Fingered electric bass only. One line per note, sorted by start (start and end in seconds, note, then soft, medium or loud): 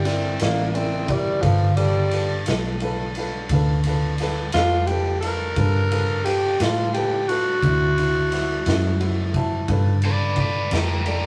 0.00 0.37 G1 medium
0.42 1.41 A1 medium
1.43 2.44 G1 medium
2.48 3.48 B1 medium
3.50 4.50 D2 medium
4.54 5.54 F2 medium
5.57 6.57 G2 medium
6.60 7.60 A2 loud
7.63 8.63 D2 medium
8.66 9.66 F#2 loud
9.69 10.69 G2 medium
10.72 11.26 F2 medium